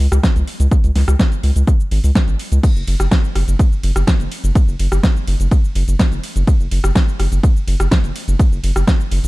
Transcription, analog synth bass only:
0.12 0.19 C#2 medium
0.36 0.43 C#2 medium
0.60 0.67 C#2 medium
0.84 0.91 C#2 medium
0.95 1.03 C#2 medium
1.08 1.15 C#2 medium
1.43 1.51 C#2 medium
1.56 1.63 C#2 medium
1.91 1.99 G#1 loud
2.04 2.11 C#2 medium
2.28 2.35 G#1 medium
2.52 2.59 C#2 medium
2.76 2.83 F#1 medium
2.87 2.95 F#1 medium
3.00 3.07 F#1 medium
3.35 3.43 F#1 medium
3.48 3.55 F#1 medium
3.83 3.91 F#1 loud
3.96 4.03 F#1 medium
4.20 4.27 F#1 medium
4.44 4.51 F#1 medium
4.68 4.75 F#1 medium
4.79 4.87 F#1 medium
4.92 4.99 F#1 medium
5.27 5.35 F#1 medium
5.40 5.47 F#1 medium
5.75 5.83 F#1 loud
5.88 5.95 F#1 medium
6.12 6.19 F#1 medium
6.36 6.43 F#1 medium
6.60 6.67 F#1 medium
6.71 6.79 F#1 medium
6.84 6.91 F#1 medium
7.19 7.27 F#1 medium
7.32 7.39 F#1 medium
7.67 7.75 F#1 loud
7.80 7.87 F#1 medium
8.04 8.11 F#1 medium
8.28 8.35 F#1 medium
8.52 8.59 F#1 medium
8.63 8.71 F#1 medium
8.76 8.83 F#1 medium
9.11 9.19 F#1 medium
9.24 9.28 F#1 medium

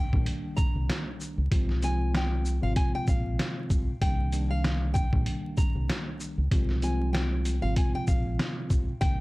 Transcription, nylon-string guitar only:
0.00 0.54 G5 medium
0.56 1.03 A#5 medium
1.84 2.12 G#5 medium
2.16 2.61 G5 medium
2.63 2.75 F5 medium
2.76 2.92 G#5 medium
2.95 3.07 G5 medium
3.09 3.98 F5 medium
4.01 4.47 G5 loud
4.50 4.93 F5 medium
4.94 5.53 G5 medium
5.57 6.03 A#5 medium
6.84 7.11 G#5 medium
7.13 7.59 G5 medium
7.62 7.75 F5 medium
7.77 7.92 G#5 medium
7.95 8.07 G5 medium
8.08 8.98 F5 medium
9.01 9.20 G5 loud

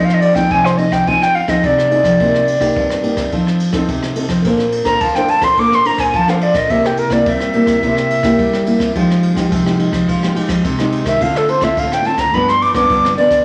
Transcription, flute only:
0.04 0.15 F5 medium
0.14 0.22 D#5 medium
0.20 0.36 D5 medium
0.35 0.53 G5 medium
0.51 0.66 G#5 loud
0.65 0.79 C5 medium
0.77 0.94 D#5 medium
0.92 1.09 G5 medium
1.08 1.24 G#5 loud
1.22 1.36 G5 loud
1.35 1.51 F5 medium
1.49 1.66 D#5 medium
1.65 3.33 D5 medium
4.84 5.02 A#5 medium
5.00 5.17 A5 medium
5.15 5.31 G5 medium
5.29 5.45 A5 loud
5.43 5.60 C6 medium
5.59 5.76 D6 loud
5.75 5.88 C6 loud
5.86 6.01 A#5 loud
5.99 6.17 G#5 medium
6.15 6.31 A5 medium
6.29 6.44 F5 medium
6.43 6.57 D5 medium
6.56 6.71 D#5 medium
6.70 6.87 E5 loud
6.86 7.00 G4 medium
6.98 7.14 A#4 medium
7.12 7.30 D5 medium
7.28 8.96 E5 medium
11.07 11.23 E5 medium
11.22 11.38 F5 medium
11.37 11.51 A4 medium
11.49 11.65 C5 medium
11.63 11.81 E5 medium
11.79 11.95 F5 medium
11.93 12.07 G5 medium
12.06 12.21 A5 medium
12.19 12.35 A#5 loud
12.34 12.50 B5 medium
12.49 12.63 C6 loud
12.62 12.74 D6 loud
12.75 13.14 D6 medium
13.17 13.43 D5 medium

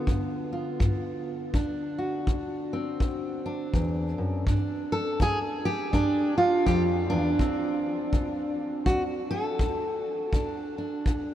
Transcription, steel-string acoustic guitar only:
0.00 4.47 D3 soft
0.00 1.50 B3 soft
0.00 0.51 F4 soft
0.00 0.52 A4 loud
0.08 0.75 G2 medium
0.53 1.51 F4 soft
0.80 1.47 G2 medium
1.54 2.21 D2 medium
1.54 3.45 D4 medium
1.98 4.43 F#4 medium
2.28 2.95 D2 medium
2.73 4.44 C4 medium
3.01 3.68 D2 medium
3.46 4.48 D4 medium
3.74 4.18 E2 medium
4.18 4.47 F#2 medium
4.47 5.14 G2 medium
4.47 5.93 D4 soft
4.92 5.21 A4 loud
5.20 5.88 G2 medium
5.20 5.38 G#4 loud
5.65 6.65 G4 loud
5.93 6.60 G2 medium
5.93 6.37 D4 medium
6.38 7.09 F4 loud
6.66 7.11 F2 medium
6.66 6.82 G4 loud
7.10 7.39 E2 medium
7.10 9.59 D4 medium
7.39 8.07 D2 medium
7.39 10.36 C4 soft
8.13 8.81 D2 medium
8.86 9.54 D2 medium
8.86 9.02 F#4 medium
9.31 11.20 A4 loud
9.60 10.27 D2 medium
10.33 11.00 D2 medium
10.33 10.78 D4 medium
10.78 11.34 D4 soft
11.07 11.34 D2 medium
11.20 11.34 G4 loud

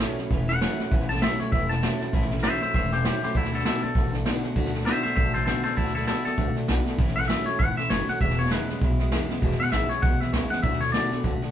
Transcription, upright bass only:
0.18 muted upright bass stroke medium
0.31 0.65 E1 medium
0.79 muted upright bass stroke medium
0.92 1.26 A1 loud
1.40 muted upright bass stroke medium
1.53 1.86 E1 medium
2.01 muted upright bass stroke medium
2.13 2.47 A1 medium
2.62 muted upright bass stroke medium
2.74 3.08 E1 medium
3.23 muted upright bass stroke medium
3.35 3.69 D2 medium
3.83 muted upright bass stroke medium
3.95 4.29 A1 medium
4.56 4.90 D2 medium
5.05 muted upright bass stroke medium
5.17 5.51 A1 medium
5.77 6.11 D2 medium
6.25 muted upright bass stroke medium
6.38 6.53 C#2 medium
6.56 muted upright bass stroke medium
6.68 6.84 B1 medium
6.99 7.33 A1 medium
7.47 muted upright bass stroke medium
7.60 7.75 G#1 medium
7.89 8.05 F#1 medium
8.08 muted upright bass stroke medium
8.21 8.54 E1 medium
8.69 muted upright bass stroke medium
8.81 9.15 B1 medium
9.30 muted upright bass stroke medium
9.42 9.55 E1 loud
9.60 muted upright bass stroke medium
9.72 9.87 A1 medium
9.90 muted upright bass stroke medium
10.03 10.18 B1 medium
10.21 muted upright bass stroke medium
10.32 10.48 C#2 medium
10.50 muted upright bass stroke medium
10.64 10.98 D2 medium
11.12 muted upright bass stroke medium
11.24 11.40 C#2 medium
11.42 muted upright bass stroke medium

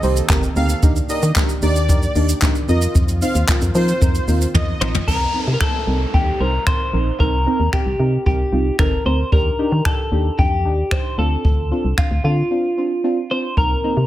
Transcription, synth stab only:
0.03 0.17 C4 medium
0.03 0.17 D#4 medium
0.03 0.17 G4 medium
0.03 0.17 C5 medium
0.29 0.44 C4 loud
0.29 0.44 D#4 loud
0.29 0.44 G4 loud
0.29 0.44 A#4 loud
0.56 0.70 C4 medium
0.56 0.70 D#4 medium
0.56 0.71 G4 medium
0.56 0.71 A#4 medium
0.82 0.97 D4 loud
0.82 0.97 D#4 loud
0.82 0.97 G4 loud
0.82 0.97 A#4 loud
1.09 1.23 D4 medium
1.09 1.23 D#4 medium
1.09 1.24 G4 medium
1.09 1.24 A#4 medium
1.36 1.50 D4 medium
1.36 1.50 D#4 medium
1.36 1.50 G4 medium
1.36 1.50 A#4 loud
1.62 1.77 D4 medium
1.62 1.77 D#4 medium
1.62 1.77 G4 medium
1.62 1.77 A#4 medium
1.89 2.03 D4 loud
1.89 2.03 D#4 loud
1.89 2.03 G4 loud
1.89 2.03 A#4 loud
2.15 2.30 D4 medium
2.15 2.30 D#4 medium
2.15 2.30 G4 medium
2.15 2.30 A#4 medium
2.42 2.56 D4 loud
2.42 2.56 D#4 loud
2.42 2.56 G4 loud
2.42 2.56 A#4 loud
2.69 3.11 C4 medium
2.69 3.11 D#4 medium
2.69 3.11 F4 medium
2.69 3.11 A#4 medium
3.22 3.36 C4 medium
3.22 3.36 D#4 medium
3.22 3.36 F4 medium
3.22 3.36 C5 medium
3.48 3.62 C4 medium
3.48 3.63 D#4 medium
3.48 3.63 F4 medium
3.48 3.63 A#4 loud
3.75 3.89 C4 medium
3.75 3.89 D#4 medium
3.75 3.89 F4 medium
3.75 3.89 A#4 medium
4.01 4.16 C4 loud
4.01 4.16 D#4 loud
4.01 4.16 F4 medium
4.01 4.16 A#4 loud
4.28 4.42 C4 medium
4.28 4.42 D#4 medium
4.28 4.42 F4 medium
4.28 4.42 A#4 medium
4.54 4.69 C4 loud
4.54 4.69 D#4 medium
4.54 4.69 F4 medium
4.54 4.69 A#4 loud
4.81 4.95 C4 medium
4.81 4.95 D#4 medium
4.81 4.95 F4 medium
4.81 4.95 A#4 medium
5.07 5.22 C4 medium
5.07 5.22 D#4 medium
5.07 5.22 A#4 loud
5.34 5.48 C4 medium
5.34 5.48 D#4 medium
5.34 5.49 A#4 loud
5.60 5.75 C4 medium
5.60 5.75 D#4 medium
5.60 5.75 A#4 medium
5.87 6.01 C4 medium
5.87 6.01 D#4 medium
5.87 6.02 A#4 medium
6.13 6.28 C4 medium
6.13 6.28 D#4 medium
6.13 6.28 A4 medium
6.40 6.54 C4 medium
6.40 6.55 D#4 medium
6.40 6.55 C5 medium
6.67 6.81 C4 medium
6.67 6.81 D#4 medium
6.67 6.81 A#4 loud
6.93 7.07 C4 medium
6.93 7.08 D#4 medium
6.93 7.08 A#4 medium
7.20 7.34 C4 loud
7.20 7.34 D#4 medium
7.20 7.34 A#4 loud
7.46 7.61 C4 medium
7.46 7.61 D#4 medium
7.46 7.61 A#4 loud
7.73 7.87 C4 medium
7.73 7.87 D#4 medium
7.73 7.87 A#4 medium
7.99 8.14 C4 medium
7.99 8.14 D#4 medium
7.99 8.14 A#4 medium
8.26 8.40 C4 medium
8.26 8.40 D#4 medium
8.26 8.40 A#4 medium
8.52 8.67 C4 medium
8.52 8.67 D#4 medium
8.52 8.67 F4 medium
8.79 8.93 C4 medium
8.79 8.93 D#4 medium
8.79 8.93 A4 loud
9.05 9.20 C4 medium
9.05 9.20 D#4 medium
9.05 9.20 A#4 medium
9.32 9.46 D4 medium
9.32 9.46 D#4 medium
9.32 9.47 G4 loud
9.59 9.73 D4 medium
9.59 9.73 D#4 medium
9.59 9.73 G4 loud
9.85 10.00 D4 medium
9.85 10.00 D#4 medium
9.85 10.00 G4 medium
10.12 10.26 D4 medium
10.12 10.26 D#4 medium
10.12 10.26 G4 medium
10.38 10.53 D4 medium
10.38 10.53 D#4 medium
10.38 10.53 G4 medium
10.65 10.79 D4 medium
10.65 10.79 D#4 medium
10.65 10.79 G4 medium
10.91 11.06 D4 medium
10.91 11.06 D#4 medium
10.91 11.06 G4 loud
11.18 11.61 C4 medium
11.18 11.61 D4 medium
11.18 11.61 F4 medium
11.71 11.85 C4 medium
11.71 11.86 D4 medium
11.71 11.86 F4 loud
11.98 12.12 C4 medium
11.98 12.12 D4 medium
11.98 12.12 F4 medium
12.24 12.38 C4 medium
12.24 12.39 D4 medium
12.24 12.39 F4 medium
12.51 12.65 C4 medium
12.51 12.65 D4 medium
12.51 12.65 F4 medium
12.77 12.92 C4 medium
12.77 12.92 D4 medium
12.77 12.92 F4 medium
13.04 13.18 C4 loud
13.04 13.18 D4 loud
13.04 13.18 F4 loud
13.30 13.45 C4 medium
13.30 13.45 D4 medium
13.30 13.45 F4 medium
13.57 13.71 A#3 loud
13.57 13.71 C4 medium
13.57 13.72 D#4 loud
13.84 13.98 A#3 medium
13.84 13.98 C4 medium
13.84 13.98 D#4 loud

